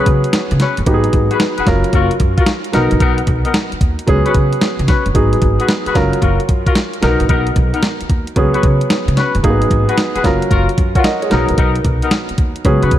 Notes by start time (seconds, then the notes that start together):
Already playing: F#3 B3 C#4 G#4
0.06 C#3, kick, closed hi-hat
0.24 closed hi-hat
0.33 snare, closed hi-hat
0.51 C#3, closed hi-hat
0.59 C#4 F#4 B4, snare, closed hi-hat
0.77 F#1, closed hi-hat
0.86 G#1 F#3 B3 D#4 G4, kick, closed hi-hat
0.94 G#4
1.04 closed hi-hat
1.13 G#1, kick, closed hi-hat
1.31 F#4 G#4 B4, closed hi-hat
1.40 snare, closed hi-hat
1.57 F#4 G#4 B4, muted upright bass stroke, closed hi-hat
1.66 F#1 F#3 C#4 F4 A#4, kick, snare, closed hi-hat
1.84 closed hi-hat
1.93 F#1 F4 F#4 A#4, kick, closed hi-hat
2.11 closed hi-hat
2.20 F#2, kick, closed hi-hat
2.38 F4 F#4 A#4, kick, closed hi-hat
2.46 snare, closed hi-hat
2.64 closed hi-hat
2.72 B1 F#3 B3 D#4 A#4, snare, closed hi-hat
2.91 A#1, closed hi-hat
3.00 B1 B3 D#4 A#4, kick, closed hi-hat
3.18 closed hi-hat
3.27 B1, kick, closed hi-hat
3.45 B3 D#4 A#4, closed hi-hat
3.54 snare, closed hi-hat
3.72 muted upright bass stroke, closed hi-hat
3.81 D#2, kick, closed hi-hat
3.99 closed hi-hat
4.07 C#2 F#3 B3 C#4 G#4, kick, closed hi-hat
4.25 C#4 F#4 B4, closed hi-hat
4.34 C#3, kick, closed hi-hat
4.53 closed hi-hat
4.61 snare, closed hi-hat
4.79 C#3, closed hi-hat
4.88 C#4 F#4 B4, kick, snare, closed hi-hat
5.06 F#1, closed hi-hat
5.14 G#1 F#3 B3 D#4 G#4, kick, closed hi-hat
5.33 closed hi-hat
5.42 G#1, kick, closed hi-hat
5.59 F#4 G#4 B4, closed hi-hat
5.68 snare, closed hi-hat
5.86 F#4 G#4 B4, muted upright bass stroke, closed hi-hat
5.94 F#1 F#3 C#4 F4 A#4, kick, snare, closed hi-hat
6.13 closed hi-hat
6.22 F#1 F4 F#4 A#4, kick, closed hi-hat
6.40 closed hi-hat
6.49 F#2, kick, closed hi-hat
6.66 F4 F#4 A#4, kick, closed hi-hat
6.75 snare, closed hi-hat
6.93 closed hi-hat
7.01 B1 F#3 B3 D#4 A#4, snare, closed hi-hat
7.20 A#1, closed hi-hat
7.29 B1 B3 D#4 A#4, kick, closed hi-hat
7.47 closed hi-hat
7.56 B1, kick, closed hi-hat
7.73 B3 D#4 A#4, closed hi-hat
7.83 snare, closed hi-hat
8.01 muted upright bass stroke, closed hi-hat
8.10 D#2, kick, closed hi-hat
8.27 closed hi-hat
8.36 C#2 F#3 B3 C#4 G#4, kick, closed hi-hat
8.54 C#4 F#4 B4, closed hi-hat
8.63 C#3, kick, closed hi-hat
8.81 closed hi-hat
8.90 snare, closed hi-hat
9.08 C#3, closed hi-hat
9.16 C#4 F#4 B4, snare, closed hi-hat
9.35 F#1, closed hi-hat
9.43 G#1 F#3 A#3 D#4 G#4, kick, closed hi-hat
9.50 B3
9.62 closed hi-hat
9.71 G#1, kick, closed hi-hat
9.88 F#4 G#4 B4, closed hi-hat
9.98 snare, closed hi-hat
10.14 F#4 G#4 B4, muted upright bass stroke, closed hi-hat
10.23 F#1 F#3 C#4 F4 A#4, kick, snare, closed hi-hat
10.42 closed hi-hat
10.50 F#1 F4 F#4 A#4, kick, closed hi-hat
10.69 closed hi-hat
10.78 F#2, kick, closed hi-hat
10.95 F4 F#4 A#4 C#5 F#5, kick, closed hi-hat
11.04 A#4 D#5, snare, closed hi-hat
11.22 G#4 C#5, closed hi-hat
11.30 B1 F#3 B3 D#4 A#4, snare, closed hi-hat
11.49 A#1, closed hi-hat
11.57 B1 B3 D#4 A#4, kick, closed hi-hat
11.76 closed hi-hat
11.85 B1, kick, closed hi-hat
12.02 B3 D#4 A#4, closed hi-hat
12.11 snare, closed hi-hat
12.29 muted upright bass stroke, closed hi-hat
12.38 D#2, kick, closed hi-hat
12.56 closed hi-hat
12.65 C#2 F#3 B3 C#4 G#4, kick, closed hi-hat
12.82 C#3 C#4 F#4 B4, closed hi-hat
12.91 kick, closed hi-hat